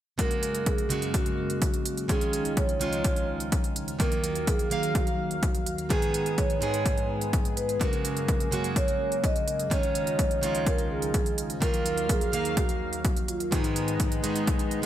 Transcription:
0.18 analog synth pad F#2 C#3 G#3 A#3, steel-string acoustic guitar C#3 G#3 A#3 F#4, vibraphone A#4, kick, closed hi-hat
0.31 closed hi-hat
0.43 closed hi-hat
0.55 closed hi-hat
0.66 vibraphone G#4, kick, closed hi-hat
0.78 closed hi-hat
0.89 steel-string acoustic guitar C#3 G#3 A#3 F#4, closed hi-hat
1.02 closed hi-hat
1.14 vibraphone F#4, kick, closed hi-hat
1.26 closed hi-hat
1.38 vibraphone F#4
1.50 closed hi-hat
1.62 kick, closed hi-hat
1.74 closed hi-hat
1.86 vibraphone F#4, closed hi-hat
1.97 closed hi-hat
2.08 analog synth pad C#2 F3 D#4, steel-string acoustic guitar D#3 G#3 C#4 F4, vibraphone G#4, kick, closed hi-hat
2.21 closed hi-hat
2.33 closed hi-hat
2.45 closed hi-hat
2.57 vibraphone C#5, kick, closed hi-hat
2.69 closed hi-hat
2.80 steel-string acoustic guitar D#3 G#3 C#4 F4, closed hi-hat
2.93 closed hi-hat
3.04 kick, closed hi-hat
3.16 closed hi-hat
3.40 closed hi-hat
3.52 kick, closed hi-hat
3.64 closed hi-hat
3.76 closed hi-hat
3.88 closed hi-hat
3.99 analog synth pad D#2 D#3 F#3 F5, steel-string acoustic guitar D#3 F#3 A#3 F4, vibraphone A#4, kick, closed hi-hat
4.12 closed hi-hat
4.24 closed hi-hat
4.35 closed hi-hat
4.47 vibraphone G#4, kick, closed hi-hat
4.59 closed hi-hat
4.70 steel-string acoustic guitar D#3 F#3 A#3 F5, closed hi-hat
4.83 closed hi-hat
4.95 vibraphone F#4, kick, closed hi-hat
5.07 closed hi-hat
5.19 vibraphone F#4
5.31 closed hi-hat
5.43 kick, closed hi-hat
5.55 closed hi-hat
5.66 vibraphone F#4, closed hi-hat
5.78 closed hi-hat
5.89 steel-string acoustic guitar G#2 D#3 G#3 B3 G#4, analog synth pad G#2 D#3 B3 G#4, vibraphone G#4, kick, closed hi-hat
6.02 closed hi-hat
6.14 closed hi-hat
6.26 closed hi-hat
6.38 vibraphone C#5, kick, closed hi-hat
6.50 closed hi-hat
6.61 steel-string acoustic guitar G#2 D#3 G#3 B3 G#4, closed hi-hat
6.74 closed hi-hat
6.86 kick, closed hi-hat
6.98 closed hi-hat
7.21 closed hi-hat
7.33 kick, closed hi-hat
7.45 closed hi-hat
7.57 vibraphone B4, closed hi-hat
7.69 closed hi-hat
7.80 analog synth pad F#2 C#3 A#3, steel-string acoustic guitar C#3 G#3 A#3 F#4, kick, closed hi-hat
7.93 closed hi-hat
8.05 closed hi-hat
8.17 closed hi-hat
8.28 kick, closed hi-hat
8.40 closed hi-hat
8.51 steel-string acoustic guitar C#3 G#3 A#3 F#4, closed hi-hat
8.64 closed hi-hat
8.76 vibraphone C#5, kick, closed hi-hat
8.88 closed hi-hat
9.12 closed hi-hat
9.24 vibraphone D#5, kick, closed hi-hat
9.36 closed hi-hat
9.48 closed hi-hat
9.60 closed hi-hat
9.70 analog synth pad C#2 C#3 F3 D#4, steel-string acoustic guitar D#3 G#3 C#4 F4, vibraphone C#5, kick, closed hi-hat
9.83 closed hi-hat
9.95 closed hi-hat
10.07 closed hi-hat
10.19 kick, closed hi-hat
10.31 closed hi-hat
10.41 steel-string acoustic guitar D#3 G#3 C#4 F4, closed hi-hat
10.55 closed hi-hat
10.67 vibraphone A#4, kick, closed hi-hat
10.78 closed hi-hat
10.90 vibraphone G#4
11.02 closed hi-hat
11.14 kick, closed hi-hat
11.26 closed hi-hat
11.38 closed hi-hat
11.50 closed hi-hat
11.61 analog synth pad D#2 D#3 F#3 F5, steel-string acoustic guitar D#3 F#3 A#3 F4, vibraphone A#4, kick, closed hi-hat
11.74 closed hi-hat
11.86 closed hi-hat
11.98 closed hi-hat
12.09 vibraphone G#4, kick, closed hi-hat
12.21 closed hi-hat
12.32 steel-string acoustic guitar D#3 F#3 A#3 F5, closed hi-hat
12.45 closed hi-hat
12.57 vibraphone F#4, kick, closed hi-hat
12.69 closed hi-hat
12.93 closed hi-hat
13.05 kick, closed hi-hat
13.17 closed hi-hat
13.28 vibraphone F4, closed hi-hat
13.40 closed hi-hat
13.51 steel-string acoustic guitar G#2 D#3 G#3 B3 G#4, analog synth pad G#2 G#3 B3 D#4, vibraphone D#4, kick, closed hi-hat
13.64 closed hi-hat
13.76 closed hi-hat
13.88 closed hi-hat
14.00 kick, closed hi-hat
14.12 closed hi-hat
14.22 steel-string acoustic guitar G#2 D#3 G#3 B3 G#4, closed hi-hat
14.36 closed hi-hat
14.47 kick, closed hi-hat
14.59 closed hi-hat
14.71 closed hi-hat
14.82 steel-string acoustic guitar G#2 D#3

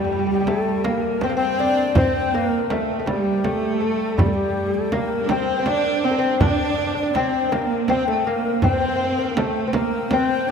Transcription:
Already playing: cello section G3, ney G4
0.04 lute G3
0.12 lute G3
0.19 lute G3
0.27 lute G3, ney G4
0.34 lute G3
0.41 lute G3
0.47 lute A3, ney A4, tombak tek, frame drum
0.84 lute A#3, cello section A#3, ney A#4, tombak tek, frame drum
1.21 cello section C4, lute C4, ney C5, tombak tek, frame drum
1.29 lute A#3
1.36 cello section C4, lute C4, ney C5
1.59 lute D4, ney D5, tombak ka
1.95 cello section C4, lute C4, ney C5, frame drum, tombak dum
2.32 cello section A#3, lute A#3, ney A#4
2.64 cello section A#3
2.70 cello section A3, lute A3, tombak tek, frame drum
3.00 lute A3, ney A4
3.06 lute G3, cello section G3, ney G4, tombak tek, frame drum
3.44 lute A3, cello section A3, tombak tek, frame drum
3.80 lute A3, ney A4, tombak ka
4.18 lute G3, cello section G3, ney G4, tombak dum, frame drum
4.27 ney A4
4.34 ney G4
4.74 ney A4
4.92 cello section A#3, lute A#3, ney A#4, tombak tek, frame drum
5.22 cello section D4
5.29 cello section C4, lute C4, ney C5, tombak tek, frame drum
5.59 lute C4
5.66 cello section D4, lute D4, ney D5, tombak tek, frame drum
5.76 ney C5
5.86 ney A#4
5.96 ney C5
6.03 cello section C4, lute C4, ney C5, tombak ka
6.11 lute A#3
6.19 lute C4, ney C5
6.40 cello section D4, lute D4, ney D5, tombak dum, frame drum
6.50 lute D4
6.57 lute D4
6.65 lute D4
6.70 lute D4
6.78 lute D4
6.87 lute D4
6.95 lute D4, ney D5
7.03 lute D4
7.14 cello section C4, lute C4, ney C5, tombak tek, frame drum
7.52 lute A#3, cello section A#3, ney A#4, tombak tek, frame drum
7.88 lute C4, cello section C4, ney C5, tombak tek, frame drum
8.08 lute A3, cello section A3, ney A4
8.25 cello section A#3, lute A#3, ney A#4, tombak ka
8.62 lute C4, cello section C4, ney C5, frame drum, tombak dum
8.73 lute C4
8.80 lute C4
8.88 lute C4
8.96 lute C4
9.04 lute C4
9.10 lute C4
9.18 lute C4, ney A#4
9.25 lute C4
9.31 lute A#3
9.37 lute A3, cello section A3, tombak tek, frame drum
9.67 lute C4
9.73 lute A#3, cello section A#3, ney A#4, tombak tek, frame drum
10.11 cello section C4, lute C4, ney C5, frame drum

